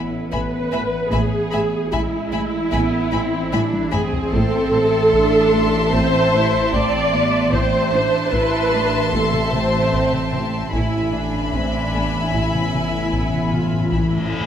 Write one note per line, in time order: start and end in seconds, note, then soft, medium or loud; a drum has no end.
0.00 1.09 A1 medium
0.00 0.18 A2 soft
0.00 1.94 B3 medium
0.00 0.33 E4 medium
0.32 0.42 A1 medium
0.32 0.58 A2 soft
0.32 1.11 B4 medium
0.32 0.40 E5 medium
0.32 0.40 G#5 medium
0.32 0.41 B5 medium
0.32 taiko medium
0.72 0.82 A1 medium
0.72 0.98 A2 medium
0.72 0.80 E5 medium
0.72 0.80 G#5 medium
0.72 0.80 B5 medium
1.12 1.21 A1 medium
1.12 4.29 A1 medium
1.12 1.38 A2 medium
1.12 1.93 G#4 medium
1.12 1.20 E5 medium
1.12 1.20 G#5 medium
1.12 1.20 B5 medium
1.12 taiko medium
1.51 1.61 A1 medium
1.51 1.78 A2 medium
1.51 1.61 E5 medium
1.51 1.60 G#5 medium
1.51 1.59 B5 medium
1.92 2.01 A1 medium
1.92 2.18 A2 medium
1.92 2.72 G#3 medium
1.92 3.93 E4 loud
1.92 2.00 E5 medium
1.92 2.00 G#5 medium
1.92 2.00 B5 medium
1.92 taiko medium
2.32 2.40 A1 medium
2.32 2.57 A3 medium
2.32 2.40 E5 medium
2.32 2.40 G#5 medium
2.32 2.41 B5 medium
2.72 2.81 A1 medium
2.72 2.97 A2 medium
2.72 3.13 B3 medium
2.72 2.80 E5 medium
2.72 2.80 G#5 medium
2.72 2.80 B5 medium
2.72 taiko medium
3.12 3.21 A1 medium
3.12 3.37 A2 medium
3.12 3.53 C4 medium
3.12 3.20 E5 medium
3.12 3.20 G#5 medium
3.12 3.20 B5 medium
3.52 3.61 A1 medium
3.52 3.77 A2 medium
3.52 3.93 D4 medium
3.52 3.61 E5 medium
3.52 3.61 G#5 medium
3.52 3.61 B5 medium
3.52 taiko high medium
3.74 taiko high medium
3.91 4.01 A1 medium
3.91 4.17 A2 medium
3.91 5.13 C4 medium
3.91 4.33 G#4 loud
3.91 3.99 E5 medium
3.91 4.00 G#5 medium
3.91 4.00 B5 medium
3.91 taiko low-mid medium
4.13 taiko low medium
4.32 7.49 A1 medium
4.32 4.57 A2 medium
4.32 5.93 A4 loud
4.32 7.49 E5 medium
4.32 7.49 A5 medium
4.32 7.49 C6 medium
4.32 taiko medium
4.73 4.97 A2 medium
5.13 5.37 A2 medium
5.13 5.93 D4 medium
5.13 taiko medium
5.53 5.77 A3 medium
5.92 6.17 A2 medium
5.92 6.32 C4 medium
5.92 6.73 C5 loud
5.92 taiko medium
6.33 6.57 A2 medium
6.33 6.73 E4 medium
6.73 6.97 A2 medium
6.73 7.13 C4 medium
6.73 7.53 D5 loud
6.73 taiko medium
7.13 7.37 A2 medium
7.13 7.53 B3 medium
7.53 10.70 A1 medium
7.53 7.77 A2 medium
7.53 7.93 C4 medium
7.53 8.33 C5 loud
7.53 10.69 E5 medium
7.53 10.69 A5 medium
7.53 10.69 C6 medium
7.53 taiko medium
7.92 8.17 A2 medium
7.92 8.33 D4 medium
8.33 8.57 A2 medium
8.33 8.73 E4 medium
8.33 9.13 B4 loud
8.33 taiko medium
8.73 8.97 A3 medium
8.73 9.13 D4 medium
9.13 9.38 A2 medium
9.13 10.73 C4 medium
9.13 9.52 A4 medium
9.13 taiko medium
9.33 taiko mid soft
9.53 9.78 A2 medium
9.53 10.33 C5 medium
9.53 taiko mid medium
9.93 10.18 A2 medium
9.93 taiko medium
10.13 taiko mid soft
10.33 10.58 A2 medium
10.33 taiko mid medium
10.72 13.89 A1 medium
10.72 13.90 A1 medium
10.72 10.98 A2 medium
10.72 11.12 E4 medium
10.72 13.89 E5 medium
10.72 13.89 G#5 medium
10.72 13.89 B5 medium
10.72 taiko medium
10.81 10.87 A2 soft
10.88 10.95 A2 soft
10.96 11.02 A2 soft
11.03 11.09 A2 soft
11.11 11.16 A2 soft
11.11 11.37 A2 medium
11.11 11.54 D4 medium
11.18 11.25 A2 soft
11.26 11.32 A2 soft
11.33 11.39 A2 soft
11.47 11.54 A2 soft
11.53 11.77 A2 soft
11.53 11.61 A2 soft
11.53 11.93 C4 medium
11.53 12.30 D4 medium
11.53 taiko medium
11.63 11.69 A2 soft
11.70 11.76 A2 soft
11.77 11.84 A2 soft
11.85 11.91 A2 soft
11.92 11.99 A2 soft
11.92 12.18 A3 soft
11.92 12.32 B3 medium
12.08 12.14 A2 soft
12.15 12.21 A2 soft
12.22 12.29 A2 soft
12.30 12.37 A2 soft
12.30 12.57 A2 medium
12.30 13.90 B3 medium
12.30 13.53 E4 medium
12.30 taiko medium
12.38 12.44 A2 soft
12.46 12.52 A2 soft
12.53 12.59 A2 soft
12.53 taiko mid soft
12.60 12.66 A2 soft
12.67 12.74 A2 soft
12.72 12.97 A2 soft
12.72 12.82 A2 soft
12.72 taiko mid medium
12.83 12.90 A2 soft
12.91 12.97 A2 soft
12.98 13.05 A2 soft
13.06 13.12 A2 soft
13.12 13.37 A2 soft
13.12 13.20 A2 soft
13.12 taiko medium
13.22 13.28 A2 soft
13.29 13.35 A2 soft
13.33 13.43 A2 soft
13.33 taiko mid soft
13.44 13.50 A2 soft
13.51 13.58 A2 medium
13.51 13.77 A2 soft
13.51 13.94 F4 medium
13.51 taiko mid soft
13.59 13.65 A2 soft
13.66 13.72 A2 soft
13.73 13.79 A2 soft
13.81 13.86 A2 soft
13.87 13.94 A2 medium
13.92 14.46 A1 medium
13.92 14.46 A1 soft
13.92 14.17 A2 medium
13.92 14.01 A2 soft
13.92 14.46 E3 soft
13.92 14.46 E4 medium
13.92 14.46 E5 soft
13.92 14.46 G#5 soft
13.92 14.46 B5 soft
13.92 taiko medium
13.92 reverse cymbal soft
14.02 14.08 A2 soft
14.10 14.16 A2 medium
14.17 14.24 A2 medium
14.25 14.32 A2 medium
14.32 14.46 A2 soft
14.32 14.39 A2 soft
14.40 14.46 A2 medium